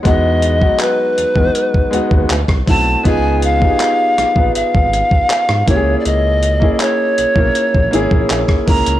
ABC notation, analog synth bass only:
X:1
M:4/4
L:1/16
Q:1/4=80
K:C#dor
V:1 name="Analog synth bass" clef=bass
E,,4 z2 E,, E,, z2 D,, D,, =D,, =C,, B,,,2 | C,,4 z2 A,,, A,,, G,,, G,,,2 z2 G,, C,,2 | C,,4 z2 B,,, B,,, z A,,, G,,, A,,, A,,, z C,, C,, |]